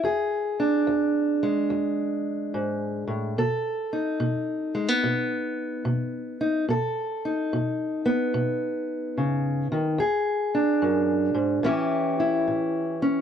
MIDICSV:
0, 0, Header, 1, 2, 480
1, 0, Start_track
1, 0, Tempo, 828729
1, 18, Time_signature, 4, 2, 24, 8
1, 7652, End_track
2, 0, Start_track
2, 0, Title_t, "Steel-string acoustic guitar"
2, 0, Program_c, 0, 25
2, 20, Note_on_c, 0, 40, 69
2, 26, Note_on_c, 0, 68, 67
2, 345, Note_on_c, 0, 62, 56
2, 467, Note_off_c, 0, 40, 0
2, 504, Note_on_c, 0, 40, 77
2, 827, Note_on_c, 0, 56, 60
2, 950, Note_off_c, 0, 40, 0
2, 985, Note_on_c, 0, 40, 73
2, 1430, Note_off_c, 0, 40, 0
2, 1471, Note_on_c, 0, 44, 61
2, 1778, Note_off_c, 0, 44, 0
2, 1781, Note_on_c, 0, 45, 68
2, 1926, Note_off_c, 0, 68, 0
2, 1928, Note_off_c, 0, 62, 0
2, 1944, Note_off_c, 0, 45, 0
2, 1948, Note_off_c, 0, 56, 0
2, 1958, Note_on_c, 0, 47, 77
2, 1961, Note_on_c, 0, 69, 66
2, 2275, Note_on_c, 0, 63, 54
2, 2398, Note_off_c, 0, 47, 0
2, 2432, Note_on_c, 0, 47, 75
2, 2749, Note_on_c, 0, 56, 59
2, 2829, Note_off_c, 0, 56, 0
2, 2829, Note_on_c, 0, 59, 49
2, 2875, Note_off_c, 0, 47, 0
2, 2917, Note_on_c, 0, 47, 79
2, 3357, Note_off_c, 0, 47, 0
2, 3388, Note_on_c, 0, 47, 68
2, 3704, Note_off_c, 0, 63, 0
2, 3711, Note_on_c, 0, 63, 57
2, 3833, Note_off_c, 0, 47, 0
2, 3850, Note_off_c, 0, 63, 0
2, 3853, Note_off_c, 0, 69, 0
2, 3868, Note_off_c, 0, 59, 0
2, 3872, Note_on_c, 0, 47, 71
2, 3882, Note_on_c, 0, 69, 68
2, 4199, Note_on_c, 0, 63, 53
2, 4315, Note_off_c, 0, 47, 0
2, 4361, Note_on_c, 0, 47, 70
2, 4666, Note_on_c, 0, 59, 64
2, 4799, Note_off_c, 0, 47, 0
2, 4830, Note_on_c, 0, 47, 81
2, 5273, Note_off_c, 0, 47, 0
2, 5314, Note_on_c, 0, 49, 54
2, 5622, Note_off_c, 0, 49, 0
2, 5628, Note_on_c, 0, 51, 63
2, 5765, Note_off_c, 0, 59, 0
2, 5770, Note_off_c, 0, 69, 0
2, 5772, Note_off_c, 0, 63, 0
2, 5782, Note_on_c, 0, 40, 77
2, 5787, Note_off_c, 0, 51, 0
2, 5791, Note_on_c, 0, 68, 75
2, 6108, Note_on_c, 0, 62, 58
2, 6227, Note_off_c, 0, 40, 0
2, 6266, Note_on_c, 0, 42, 70
2, 6568, Note_off_c, 0, 42, 0
2, 6570, Note_on_c, 0, 44, 71
2, 6723, Note_off_c, 0, 68, 0
2, 6724, Note_off_c, 0, 62, 0
2, 6734, Note_off_c, 0, 44, 0
2, 6736, Note_on_c, 0, 45, 90
2, 6744, Note_on_c, 0, 52, 70
2, 6746, Note_on_c, 0, 61, 74
2, 6751, Note_on_c, 0, 64, 64
2, 6754, Note_on_c, 0, 67, 72
2, 7058, Note_off_c, 0, 64, 0
2, 7065, Note_on_c, 0, 64, 64
2, 7182, Note_off_c, 0, 45, 0
2, 7225, Note_on_c, 0, 45, 63
2, 7532, Note_off_c, 0, 61, 0
2, 7542, Note_on_c, 0, 61, 61
2, 7652, Note_off_c, 0, 45, 0
2, 7652, Note_off_c, 0, 52, 0
2, 7652, Note_off_c, 0, 61, 0
2, 7652, Note_off_c, 0, 64, 0
2, 7652, Note_off_c, 0, 67, 0
2, 7652, End_track
0, 0, End_of_file